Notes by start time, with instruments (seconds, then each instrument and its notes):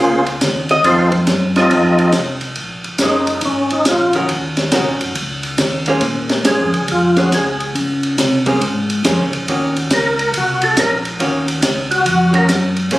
Already playing: tonewheel organ A#3 C#4 F4 G#4 C5
0.00 tonewheel organ C#2
0.26 ride
0.41 tonewheel organ D#2, kick, snare, hi-hat pedal, ride
0.69 hollow-body jazz guitar D#5, ride
0.84 tonewheel organ F2 C4 D#4 F4 A4 C5, hollow-body jazz guitar C5, kick, ride
1.12 kick, ride
1.27 tonewheel organ F#2, kick, snare, hi-hat pedal, ride
1.56 tonewheel organ C4 D#4 F4 A4 D#5, snare, ride
1.70 tonewheel organ F2, kick, ride
1.99 ride
2.12 tonewheel organ C2, kick, snare, hi-hat pedal, ride
2.41 ride
2.56 tonewheel organ A#1, kick, ride
2.84 tonewheel organ A#1, ride
2.98 tonewheel organ F#1, hollow-body jazz guitar A#3 C#4 G#4 C5, kick, snare, hi-hat pedal, ride
3.03 tonewheel organ D#4
3.27 ride
3.41 tonewheel organ G#1, kick, ride
3.45 tonewheel organ C#4
3.70 tonewheel organ D#4, ride
3.85 tonewheel organ A#1 F4, kick, snare, hi-hat pedal, ride
4.13 hollow-body jazz guitar D#3 C#4 F#4 A#4, ride
4.28 tonewheel organ D#2, kick, ride
4.57 snare, ride
4.72 tonewheel organ C2, hollow-body jazz guitar D#3 C#4 F#4 A#4, kick, snare, hi-hat pedal, ride
4.86 tonewheel organ A#1
5.01 tonewheel organ F#1, ride
5.15 tonewheel organ C#2, kick, ride
5.43 ride
5.58 tonewheel organ D#2, kick, snare, hi-hat pedal, ride
5.86 hollow-body jazz guitar A#3 C#4 G#4 C5, ride
6.01 tonewheel organ A#2, kick, ride
6.29 snare, ride
6.45 tonewheel organ G#2 G#4, hollow-body jazz guitar A#3 C#4 G#4 C5, kick, snare, hi-hat pedal, ride
6.59 tonewheel organ F2
6.73 tonewheel organ C#2, ride
6.88 tonewheel organ F2 F4, kick, ride
7.16 hollow-body jazz guitar A#3 C#4 G#4 C5, tonewheel organ F#4, snare, ride
7.32 tonewheel organ C#2 G#4, kick, snare, hi-hat pedal, ride
7.60 ride
7.75 tonewheel organ C#3, kick, ride
8.03 ride
8.18 tonewheel organ C3, kick, snare, hi-hat pedal, ride
8.46 hollow-body jazz guitar A#3 C#4 G#4 C5, kick, ride
8.61 tonewheel organ G#2, kick, ride
8.90 ride
9.04 tonewheel organ F2, hollow-body jazz guitar A#3 C#4 G#4 C5, kick, snare, hi-hat pedal, ride
9.18 tonewheel organ C#2
9.32 tonewheel organ A#1, ride
9.48 tonewheel organ D#2, hollow-body jazz guitar D#3 A#3 C#4 F#4, kick, ride
9.76 ride
9.90 tonewheel organ C#2 A#4, kick, snare, hi-hat pedal, ride
10.19 ride
10.33 tonewheel organ C2, kick, ride
10.37 tonewheel organ F#4
10.62 tonewheel organ A4, ride
10.77 tonewheel organ A#1 A#4, kick, snare, hi-hat pedal, ride
11.05 ride
11.20 tonewheel organ D#2, hollow-body jazz guitar D#3 A#3 C#4 F#4, kick, ride
11.48 ride
11.62 tonewheel organ C#2, kick, snare, hi-hat pedal, ride
11.91 tonewheel organ F#4, ride
12.05 tonewheel organ F2, kick, ride
12.33 hollow-body jazz guitar D#3 A#3 C#4 F#4, tonewheel organ A#4, ride
12.48 tonewheel organ F#2, kick, snare, hi-hat pedal, ride
12.77 ride
12.91 tonewheel organ A#2, hollow-body jazz guitar A#3 C#4 G#4 C5, kick, ride